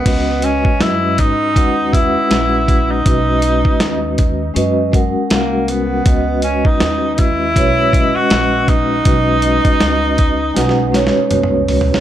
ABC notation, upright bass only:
X:1
M:4/4
L:1/16
Q:"Swing 16ths" 1/4=80
K:C#dor
V:1 name="Upright bass" clef=bass
C,,3 z F,,2 G,,2 D,,3 z A,,,4 | B,,,3 z D,,4 F,,3 z ^B,,,4 | C,,3 z D,,4 B,,,3 z A,,,4 | B,,,3 z C,,4 B,,,3 z ^B,,,4 |]